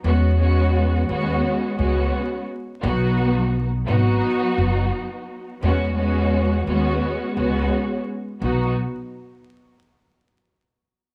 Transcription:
X:1
M:4/4
L:1/8
Q:"Swing 16ths" 1/4=86
K:B
V:1 name="String section"
[G,B,CF] [G,B,CF]2 [G,B,CF]2 [G,B,CF]2 z | [F,B,DF]2 z [F,B,DF]4- [F,B,DF] | [G,B,CF] [G,B,CF]2 [G,B,CF]2 [G,B,CF]2 z | [F,B,DF] z6 z |]
V:2 name="Upright bass" clef=bass
E,,3 D,, z C,, z2 | B,,,3 G,,, z F,,, z2 | E,,3 D,, z C,, z2 | B,,, z6 z |]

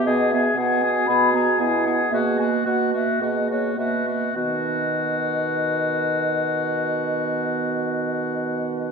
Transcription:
X:1
M:4/4
L:1/8
Q:1/4=104
K:B
V:1 name="Flute"
d e f g b a g f | e g f e d c e2 | d8- | d8 |]
V:2 name="French horn"
G2 F4 E2 | G z F2 G2 F z | D,8- | D,8 |]
V:3 name="Oboe"
G G G G G G G G | F F F F F F F F | F8- | F8 |]
V:4 name="Clarinet"
B, B, B, B, B, B, B, B, | A, A, A, A, A, A, A, A, | B,8- | B,8 |]
V:5 name="Bassoon" clef=bass
B,,2 B,,2 B,,2 B,,2 | B,,2 B,,2 B,,2 B,,2 | B,,8- | B,,8 |]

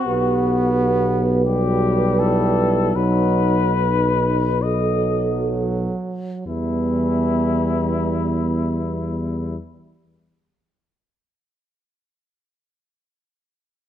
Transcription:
X:1
M:4/4
L:1/16
Q:1/4=32
K:Em
V:1 name="French horn section"
B8 B4 A2 z2 | B,16 |]
V:2 name="Cornet"
F3 z G2 A2 B4 ^d2 z2 | E16 |]
V:3 name="Euphonium"
G2 G2 F2 E2 ^D2 D2 F2 z2 | G,16 |]
V:4 name="Trombone" clef=bass
B,4 G,4 F,3 z F,4 | E,16 |]
V:5 name="Tuba" clef=bass
B,,,8 B,,,6 z2 | E,,16 |]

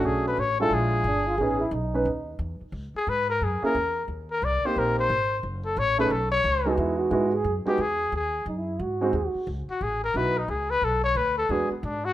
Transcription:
X:1
M:4/4
L:1/16
Q:"Swing" 1/4=178
K:C#m
V:1 name="Trumpet"
G2 B2 c2 A2 G8- | G4 z12 | z2 G2 B2 ^A2 G2 A6 | z2 ^A2 =d2 ^B2 A2 B6 |
z2 A2 c2 B2 A2 c6 | z8 z2 =G2 ^G4 | G4 z12 | z2 F2 G2 ^A2 B2 D2 G2 B2 |
A2 c2 B2 A2 G2 B,2 =D2 F2 |]
V:2 name="Trombone"
z12 =D2 ^E2 | G2 E2 D8 z4 | z16 | z16 |
z12 z2 D2 | E2 F2 E2 G3 z6 z | z4 D E3 F4 G F3 | z16 |
z16 |]
V:3 name="Grand piano"
[A,C=DF]4 z2 [G,DE=F]6 z4 | [B,CDG]2 z4 [B,CDB]2 z8 | z8 z2 [^A,CEG]2 z4 | z6 [^A,^B,D=G]6 z4 |
z6 [A,CDG]2 z6 [G,B,DF]2- | [G,B,DF]4 [G,B,DF]2 z4 [G,B,DF]2 z4 | z8 z2 [G,^B,DF]2 z4 | z8 [B,DEF]2 z6 |
z8 [G,B,=DF]2 z6 |]
V:4 name="Upright bass" clef=bass
B,,,4 A,,,4 ^A,,,4 =G,,,4 | A,,,4 B,,,4 D,,4 E,,2 z2 | C,,2 z2 G,,4 F,,2 z2 E,,4 | D,,4 ^B,,,2 z2 ^A,,,4 G,,,4 |
F,,,4 A,,,4 B,,,4 C,,4 | E,,4 G,,4 F,,2 z2 E,,4 | D,,4 F,,4 G,,4 D,,2 z2 | C,,2 z2 A,,,4 B,,,4 C,,4 |
B,,,4 =D,,4 E,,2 z2 G,,4 |]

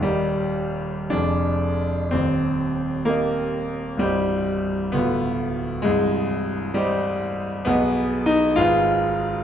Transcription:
X:1
M:6/8
L:1/8
Q:3/8=65
K:Eb
V:1 name="Grand piano"
[E,,,E,,GBe]3 [F,,,F,,Ad]3 | [E,,,E,,]3 [GBe]3 | [C,,,C,,Gce]3 [D,,,D,,F=Bf]3 | [C,,,C,,]3 [Gce]3 |
[K:Cblyd] [=B,,,=B,,^G^d^f]3 [A,,,A,,Ac=f]3 |]
V:2 name="Grand piano"
G,3 D3 | C3 B,3 | G,3 =B,3 | A,3 G,3 |
[K:Cblyd] =B,2 ^D F3 |]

